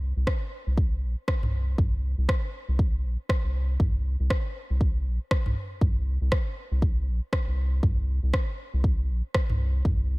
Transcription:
0.00 0.13 C2 loud
0.16 0.25 C2 loud
0.27 kick loud
0.27 cross-stick loud
0.67 1.04 C2 medium
0.77 kick loud
1.03 1.15 A#1 medium
1.28 kick loud
1.28 cross-stick loud
1.42 1.75 C2 medium
1.42 mid tom medium
1.78 2.14 C2 loud
1.78 kick loud
1.78 mid tom medium
2.18 2.27 C2 loud
2.29 kick loud
2.29 cross-stick loud
2.68 3.05 C2 medium
2.79 kick loud
3.04 3.17 A#1 medium
3.29 kick loud
3.29 cross-stick loud
3.44 3.77 C2 medium
3.80 4.16 C2 loud
3.80 kick loud
3.80 mid tom medium
4.20 4.29 C2 loud
4.30 kick loud
4.30 cross-stick loud
4.70 5.07 C2 medium
4.81 kick loud
5.06 5.18 A#1 medium
5.31 kick loud
5.31 cross-stick loud
5.46 5.55 C2 loud
5.46 mid tom medium
5.81 6.18 C2 loud
5.81 kick loud
5.81 mid tom medium
6.21 6.30 C2 loud
6.32 kick loud
6.32 cross-stick loud
6.71 7.09 C2 medium
6.82 kick loud
7.07 7.20 A#1 medium
7.33 kick loud
7.33 cross-stick loud
7.47 7.80 C2 medium
7.83 8.19 C2 loud
7.83 kick loud
7.83 mid tom medium
8.23 8.32 C2 loud
8.34 kick loud
8.34 cross-stick loud
8.74 9.11 C2 medium
8.84 kick loud
9.09 9.22 A#1 medium
9.34 kick loud
9.34 cross-stick loud
9.49 9.82 C2 medium
9.49 mid tom medium
9.85 10.19 C2 loud
9.85 kick loud
9.85 mid tom medium

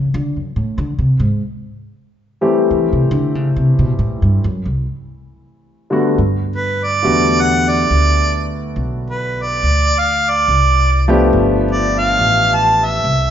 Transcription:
0.14 0.36 D3 medium
0.36 0.55 F#2 soft
0.56 0.75 A2 medium
0.78 0.93 D3 medium
0.99 1.19 C3 medium
1.19 1.39 G#2 medium
2.41 3.49 E3 medium
2.41 3.49 G3 medium
2.41 3.49 A3 medium
2.41 3.49 C4 medium
2.41 3.49 G4 medium
2.71 2.92 E3 medium
2.93 3.10 C3 medium
3.11 3.35 D3 loud
3.35 3.51 C#3 medium
3.56 3.78 C3 medium
3.79 3.98 B2 medium
3.99 4.19 A2 medium
4.22 4.38 G2 medium
4.44 4.65 F#2 medium
4.65 4.85 C2 medium
5.90 6.14 D3 medium
5.90 6.14 G3 medium
5.90 6.15 A3 medium
5.90 6.15 B3 medium
5.90 6.15 F#4 medium
6.18 7.02 G2 medium
6.56 6.86 B4 medium
6.84 7.43 D5 medium
7.03 7.89 E2 medium
7.03 8.37 D3 medium
7.03 8.38 G3 medium
7.03 8.38 A3 medium
7.03 8.38 B3 medium
7.03 8.39 F#4 medium
7.42 7.71 F#5 medium
7.70 8.52 D5 medium
7.91 8.74 D2 medium
8.76 9.59 B1 medium
9.10 9.44 B4 medium
9.43 10.01 D5 medium
9.63 10.46 D2 medium
9.99 10.32 F5 medium
10.30 11.10 D5 medium
10.48 11.31 C2 medium
11.08 12.14 F3 medium
11.08 12.14 A3 medium
11.08 12.14 B3 medium
11.08 12.15 D4 medium
11.08 12.14 G4 medium
11.33 12.16 G1 medium
11.71 12.01 D5 medium
11.99 12.57 F5 medium
12.19 13.01 A1 medium
12.55 12.87 A5 medium
12.86 13.30 E5 medium
13.04 13.30 C2 medium

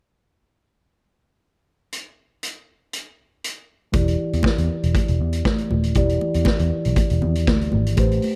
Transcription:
1.92 closed hi-hat medium
2.43 closed hi-hat medium
2.93 closed hi-hat medium
3.44 closed hi-hat medium
3.92 4.15 E1 medium
3.92 5.91 E3 medium
3.92 5.92 E4 medium
3.92 5.93 G4 medium
3.92 5.93 D5 medium
3.92 kick loud
3.92 closed hi-hat medium
3.92 muted conga soft
4.08 closed hi-hat soft
4.33 4.43 E2 medium
4.33 closed hi-hat soft
4.43 muted picked electric bass stroke soft
4.43 kick loud
4.43 snare loud
4.43 high conga medium
4.58 4.68 E2 medium
4.58 closed hi-hat soft
4.83 4.93 E1 medium
4.83 closed hi-hat soft
4.95 kick loud
4.95 closed hi-hat medium
4.95 muted conga medium
5.08 5.19 E1 medium
5.08 closed hi-hat soft
5.21 5.41 E2 medium
5.33 closed hi-hat medium
5.45 kick loud
5.45 snare loud
5.45 high conga medium
5.58 closed hi-hat soft
5.71 5.92 D#1 medium
5.71 high conga medium
5.83 closed hi-hat medium
5.95 6.17 E1 medium
5.95 7.94 E3 medium
5.95 7.94 E4 medium
5.95 7.94 G4 medium
5.95 7.95 D5 medium
5.95 kick medium
5.95 closed hi-hat medium
5.95 muted conga soft
6.09 closed hi-hat soft
6.21 muted conga soft
6.34 6.45 E2 medium
6.34 closed hi-hat soft
6.45 kick loud
6.45 snare loud
6.45 high conga medium
6.59 6.70 E2 medium
6.59 closed hi-hat soft
6.85 6.96 B1 medium
6.85 closed hi-hat soft
6.96 kick loud
6.96 closed hi-hat medium
6.96 muted conga soft
7.10 7.21 E1 medium
7.10 closed hi-hat soft
7.22 7.47 E2 medium
7.22 low conga medium
7.35 closed hi-hat medium
7.47 7.68 D2 medium
7.47 kick loud
7.47 snare loud
7.47 high conga medium
7.61 closed hi-hat soft
7.72 7.94 G#1 medium
7.72 high conga medium
7.86 closed hi-hat soft
7.96 8.19 A1 medium
7.96 8.36 A3 medium
7.96 8.36 G4 medium
7.96 8.36 B4 medium
7.96 8.36 C5 medium
7.96 kick loud
7.96 closed hi-hat medium
7.96 muted conga soft
8.11 closed hi-hat soft
8.22 open hi-hat medium
8.22 muted conga soft

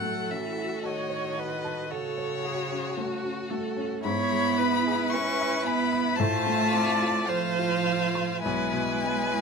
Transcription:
0.00 3.99 A2 medium
0.00 0.32 F#3 medium
0.00 0.46 A3 medium
0.00 1.89 F#4 medium
0.00 0.87 A4 medium
0.00 0.32 F#5 loud
0.30 0.84 E3 medium
0.30 0.74 C#4 soft
0.30 0.83 E5 medium
0.57 1.00 F#4 soft
0.83 1.93 D#3 medium
0.83 1.27 A4 medium
0.83 1.41 C#5 medium
0.83 1.92 D#5 medium
1.09 1.53 C#5 medium
1.37 1.92 B4 medium
1.37 1.81 F#5 medium
1.64 2.07 A5 medium
1.89 3.50 C#3 medium
1.89 3.98 F#4 medium
1.89 2.46 A4 medium
1.89 3.49 C#5 loud
1.89 2.34 F#5 medium
2.18 2.60 C#5 medium
2.45 2.87 F#4 medium
2.45 2.99 G#4 medium
2.72 3.14 C#4 medium
2.97 3.39 A3 medium
2.97 3.52 F#4 medium
3.25 3.66 C#4 medium
3.50 3.93 A3 medium
3.50 4.03 A4 medium
3.77 4.04 C#4 medium
4.03 6.14 G#2 medium
4.03 5.13 B3 loud
4.03 6.18 E4 medium
4.03 4.59 C#5 loud
4.03 5.11 B5 loud
4.32 4.74 G#3 medium
4.58 5.01 E4 soft
4.58 6.19 B4 medium
4.87 5.29 G#4 medium
5.10 5.65 C#4 loud
5.10 5.64 C#6 loud
5.14 5.55 B4 medium
5.41 5.82 E5 medium
5.63 6.17 B3 loud
5.63 6.08 G#5 medium
5.63 6.18 B5 loud
5.93 6.18 B5 medium
6.16 7.29 A3 loud
6.16 7.25 F4 loud
6.16 6.73 C5 medium
6.16 7.28 A5 loud
6.20 8.40 A2 loud
6.46 6.89 A3 medium
6.72 7.17 C4 medium
6.72 7.30 D5 loud
7.02 7.46 F4 medium
7.26 8.42 F3 loud
7.26 8.39 F4 medium
7.26 8.42 C5 loud
7.26 8.40 F5 loud
7.30 7.74 C5 medium
7.59 8.03 F4 medium
7.87 8.32 F5 medium
8.15 8.44 C6 medium
8.41 9.41 G#3 loud
8.41 9.41 E4 medium
8.41 9.41 B4 loud
8.41 9.41 G#5 loud
8.45 9.41 B1 medium
8.73 9.20 B2 medium
9.04 9.41 B3 medium
9.32 9.41 E4 medium

